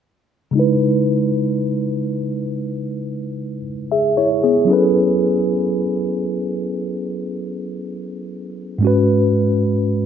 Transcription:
tine electric piano
0.51 C#3 G#3
0.55 D#4 E4 B4
3.92 G#4 E5
4.17 E4 C#5
4.43 B3 G#4
4.65 F#3 C#4 E4
4.70 G#4 A4 B4
8.78 G#2 G#3
8.83 C#4 F#4
8.87 B4

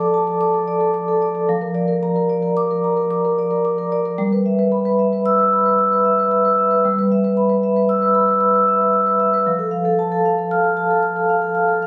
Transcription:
vibraphone
Already playing: F3 D5 A5 D6
0.00 A4
0.14 A5
0.27 A4
0.41 D6
0.54 A4
0.68 D5
0.80 A4
0.94 D6
1.08 A4
1.22 D5
1.35 A4
1.49 F3
1.62 A#4
1.75 D5
1.88 A#4
2.03 A#5
2.16 A#4
2.29 D5
2.42 A#4
2.57 D6
2.71 A#4
2.84 A#5
2.97 A#4
3.11 D6
3.25 A#4
3.39 D5
3.51 A#4
3.65 D6
3.78 A#4
3.92 D5
4.05 A#4
4.18 G3
4.32 B4
4.46 E5
4.59 B4
4.72 B5
4.85 B4
4.99 E5
5.13 B4
5.26 E6
5.39 B4
5.53 B5
5.66 B4
5.79 E6
5.92 B4
6.05 E5
6.19 B4
6.31 E6
6.45 B4
6.58 E5
6.71 B4
6.85 G3
6.99 B4
7.12 E5
7.24 B4
7.37 B5
7.49 B4
7.63 E5
7.76 B4
7.89 E6
8.02 B4
8.15 B5
8.28 B4
8.40 E6
8.54 B4
8.67 E5
8.81 B4
8.93 E6
9.07 B4
9.20 E5
9.34 B4
9.47 F3
9.59 A4
9.71 F5
9.85 A4
9.99 A5
10.12 A4
10.25 F5
10.38 A4
10.51 F6
10.64 A4
10.77 A5
10.90 A4
11.03 F6
11.16 A4
11.29 F5
11.42 A4
11.55 F6
11.68 A4
11.82 F5

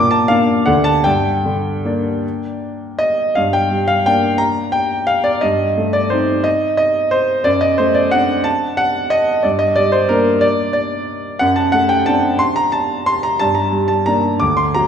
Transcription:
grand piano
Already playing: A#2 D6
0.11 A5
0.28 A#3 D4 F5
0.66 D2 D3 A3 D4 F#5
0.84 A5
1.04 G2 G5
1.45 D3
1.85 A#3 D4
2.99 D#5
3.35 G2 F5
3.53 G5
3.71 G3
3.88 F5
4.06 A#3 D4 G5
4.38 A#5
4.72 G5
5.07 F5
5.24 D5
5.41 G2 D#5
5.78 A3
5.93 D5
6.10 C4 D#4 C5
6.44 D#5
6.77 D#5
7.11 C5
7.44 F#2 D5
7.61 D#5
7.78 A3 C5
7.94 D5
8.11 C4 D4 F#5
8.44 A5
8.77 F#5
9.10 D#5
9.43 G2 D5
9.59 D#5
9.76 G3 D5
9.92 C5
10.09 A#3 D4 A#4
10.41 D5
10.73 D5
11.39 F#2 F#5
11.56 A5
11.72 A3 F#5
11.89 G5
12.06 C4 D4 A5
12.39 C6
12.56 A#5
12.72 A5
13.06 C6
13.23 A#5
13.39 G2 A5
13.55 A#5
13.72 G3
13.88 A5
14.06 A#3 D4 A#5
14.40 D2 D6
14.57 C6
14.74 F#3 A#5

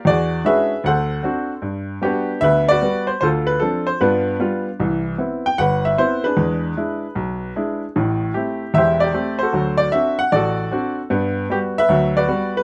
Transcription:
grand piano
0.05 E2 F#4 G#4 D5
0.45 G#3 C#4 D4 E4 F#4 G#4 B4 E5
0.84 D2 A4 C5 F#5
1.23 C4 D4 F#4
1.62 G2
2.02 G3 B3 D4 F#4 G4
2.41 D2 B4 E5
2.69 F#4 B4 D5
2.82 G3 B3 F#4
3.07 C5
3.21 D2 F4 A4 C5
3.47 B4
3.60 F3 C4 D4 A4
3.87 C5
4.01 G2 B3 D4 F4 B4
4.40 G3 B3 F4
4.80 C2 E3
5.18 B3 C4 E4
5.46 G5
5.58 G1 B4 F#5
5.85 E5
5.98 B3 C4 E4 C5
6.24 D4 G#4 B4
6.37 E2 G#3
6.76 G#3 D4 E4
7.15 B1
7.56 G#3 D4 E4
7.96 A1 A2
8.34 A3 C4 E4 G4
8.74 E1 E2 G4 C5 E5
9.00 G4 D5
9.14 A3 C4 G4
9.39 C5
9.43 F#4 A4
9.53 D2 F#3
9.77 D5
9.92 C4 D4 F#4 E5
10.19 F#5
10.32 A1 F#4 A4 D5
10.71 C4 D4 F#4
11.10 G2 B3
11.50 G3 B3 F#4 G4
11.78 B4 E5
11.89 D2 F#3
12.17 F#4 B4 D5
12.29 G3 B3 F#4
12.57 B4

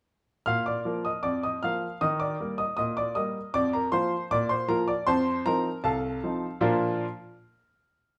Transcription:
grand piano
0.46 A#2 F5 F6
0.66 D5 D6
0.85 F3 A#3 A#4
1.05 D#5 D#6
1.23 F2 D5 D6
1.43 D#5 D#6
1.63 F3 A#3 A#4 F5 F6
2.01 D#3 D#5 D#6
2.20 D5 D6
2.40 G3 A#3 A#4
2.58 D#5 D#6
2.77 A#2 D#5 D#6
2.97 D5 D6
3.15 G3 A#3 A#4 D#5 D#6
3.54 F2 D5 D6
3.73 A#4 A#5
3.92 F3 A#3 F4 C5 C6
4.31 A#2 D5 D6
4.49 C5 C6
4.68 F3 A#3 F4 A#4 A#5
4.88 D5 D6
5.07 F2 C5 A5 C6
5.46 F3 C4 D#4 A#4 A#5
5.84 C2 A4 F5 A5
6.24 F3 C4 D#4
6.61 A#2 F3 D4 F4 A#4 D5 A#5

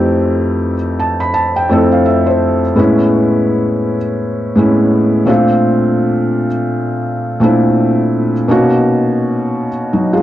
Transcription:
felt piano
Already playing: F2 A3 C4 E4 G4
1.00 A5
1.20 B5
1.34 A5
1.56 G5
1.69 F2 A3 C4 E4 A4
1.92 F5
2.06 E5
2.27 C5
2.75 A2 G#3 B3 C#4 E4
4.56 A2 G#3 B3 C#4 E4
5.26 A#2 A3 C4 D4 F4
7.40 A#2 A3 C4 D4 E4
8.48 B2 A#3 C#4 D#4 F#4
9.93 F#3 D#4
10.13 G#3 F4

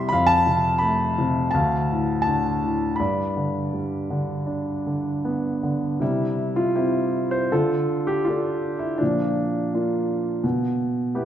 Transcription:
grand piano
Already playing: C3 G3 E4 E5 C6
0.09 F2 F5 B5
0.27 A5
0.46 C3
0.78 A3 B5
1.18 C3
1.51 D2 F5 A5
1.91 A2
2.22 A5
2.27 D3
2.63 A2
2.96 B5
3.00 G2 D5
3.36 D3
3.73 G3
4.10 D3
4.46 D4
4.86 D3
5.25 B3
5.63 D3
6.00 C3 G3 E4
6.56 F4
6.75 C4 E4 G4
7.31 C5
7.52 D3 F4 A4
8.07 G4
8.25 D4 F4
8.29 F4 A4
8.79 E4
8.98 F3 D4
9.02 A#2
9.74 A#3 D4 F4
10.44 B2
11.15 B3 E4 G4

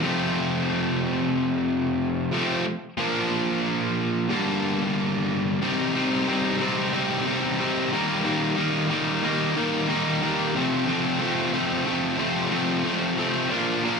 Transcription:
overdriven electric guitar
0.01 F2 C3 F3 A3 C4
2.32 F2 C3 F3 A3 C4
2.97 A#2 F3 A#3 D4
4.29 G2 D3 G3 A#3 D4
5.62 C3 G3 C4 D#4
5.95 C3 G3 C4 D#4
6.28 C3 G3 C4 D#4
6.61 C3 G3 C4 D#4
6.93 C3 G3 C4 D#4
7.27 C3 G3 C4 D#4
7.60 C3 G3 C4 D#4
7.92 D#3 G3 A#3 D#4
8.24 D#3 G3 A#3 D#4
8.57 D#3 G3 A#3 D#4
8.89 D#3 G3 A#3 D#4
9.23 D#3 G3 A#3 D#4
9.56 D#3 G3 A#3 D#4
9.88 D#3 G3 A#3 D#4
10.22 D#3 G3 A#3 D#4
10.55 F2 C3 F3 A3 C4
10.87 F2 C3 F3 A3 C4
11.20 F2 C3 F3 A3 C4
11.52 F2 C3 F3 A3 C4
11.85 F2 C3 F3 A3 C4
12.17 F2 C3 F3 A3 C4
12.50 F2 C3 F3 A3 C4
12.84 F2 C3 F3 A3 C4
13.17 F2 C3 F3 A3 C4
13.50 A#2 F3 A#3 D4
13.83 A#2 F3 A#3 D4

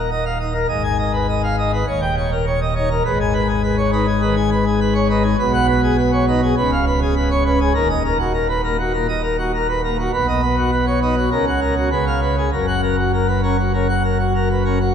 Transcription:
pipe organ
Already playing: D#1 D#2
0.11 D#5
0.25 F5
0.39 D#4 D#5
0.54 A#4
0.69 G#1 G#2 D#5
0.84 G#5
0.99 D#5
1.13 B4
1.29 D#5
1.43 F5
1.58 D#4 D#5
1.73 B4
1.87 D#1 D#2 C#5
2.02 G5
2.17 C#5
2.32 A#4
2.46 C#5
2.62 D#5
2.76 D#4 C#5
2.90 A#4
3.05 G#1 G#2 B4
3.20 G#5
3.34 B4
3.48 G#4
3.63 B4
3.78 C#5
3.92 D#4 B4
4.08 G#4
4.22 D#3 B4
4.37 G#5
4.52 B4
4.67 G#4
4.81 B4
4.95 C#5
5.10 D#4 B4
5.24 G#4
5.39 B1 B2 B4
5.53 F#5
5.68 B4
5.83 G#4
5.98 B4
6.13 C#5
6.28 D#4 B4
6.42 G#4
6.57 C#1 C#2 B4
6.72 F5
6.87 B4
7.02 G#4
7.16 B4
7.31 C#5
7.46 C#4 B4
7.60 G#4
7.75 D#1 D#2 A#4
7.90 D#5
8.05 A#4
8.19 F#4
8.34 A#4
8.49 B4
8.64 A#3 A#4
8.79 F#4
8.94 A#2 A#4
9.09 D#5
9.23 A#4
9.38 F#4
9.54 A#4
9.69 B4
9.84 A#3 A#4
9.99 F#4
10.14 B1 B2 B4
10.28 D#5
10.42 B4
10.58 F#4
10.72 B4
10.87 C#5
11.02 D#4 B4
11.17 F#4
11.32 C#2 C#3 A#4
11.47 F#5
11.61 A#4
11.77 F#4
11.92 C#2 C#3 B4
12.07 F5
12.22 B4
12.37 G#4
12.52 F#1 F#2 A#4
12.67 F#5
12.83 A#4
12.99 F#4
13.14 A#4
13.28 B4
13.43 C#4 A#4
13.59 F#4
13.73 C#3 A#4
13.89 F#5
14.04 A#4
14.19 F#4
14.35 A#4
14.51 B4
14.65 C#4 A#4
14.80 F#4

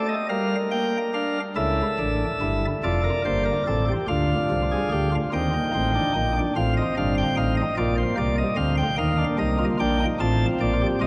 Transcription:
pipe organ
Already playing: A3 A4
0.09 D#5
0.29 G3 A#4 F5
0.71 A#3 G5
1.14 D4 F5
1.56 C#2 C#3 E4 A4 E5
1.99 A1 A2 D4
2.41 G1 G2 E4
2.84 F1 F2 F4 A4 D5
3.04 A#4
3.25 G1 G2 A#3 C5
3.45 A#4
3.67 A1 A2 C4 A4
3.88 G4
4.08 D2 D3 D4 F4 F5
4.51 C2 C3
4.71 G#4
4.92 D2 D3 G4
5.12 F4
5.33 D#2 D#3 C4 D#4 G5
5.53 A#3
5.74 A1 A2 C4
5.95 D4
6.15 A#1 A#2 D#4
6.36 D4
6.56 A1 A2 C4 F4 F5
6.77 D#5
6.97 G1 G2 D4 F5
7.18 G5
7.37 A1 A2 D#4 F5
7.57 D#5
7.77 A#1 A#2 A#3 F4 D5
7.98 C5
8.18 C2 C3 A#3 D5
8.38 D#5
8.56 D2 D3 C4 F5
8.77 G5
8.98 D#2 D#3 A#3 D#4 F5
9.18 D4
9.38 C2 C3 D#4 D#5
9.59 F4
9.79 A#1 A#2 D4 G5
10.00 D#4
10.20 A1 A2 C4 F4 A5
10.60 A#1 A#2 D5
10.81 G4
11.01 C2 C3 F4 D#5

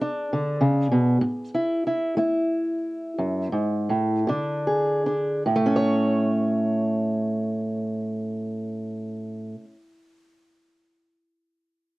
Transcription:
steel-string acoustic guitar
Already playing: G#4
0.02 D4
0.33 D3
0.61 C#3
0.92 B2
1.21 A2
1.54 E4
1.87 E4
2.17 A3 E4
3.18 F#2
3.52 G#2
3.89 A2
4.27 A#2 D3 D4
4.67 G#4
5.06 D4
5.46 A2
5.55 A3
5.66 C#4
5.76 C#5

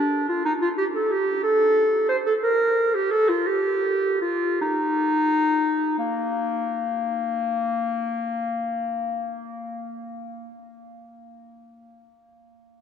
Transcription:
clarinet
Already playing: D4
0.29 F4
0.45 D#4
0.62 F4
0.78 G4
0.95 A4
1.12 G4
1.43 A4
2.09 C5
2.27 A4
2.43 A#4
2.95 G4
3.11 A4
3.29 F4
3.47 G4
4.22 F4
4.62 D#4
5.99 A#3

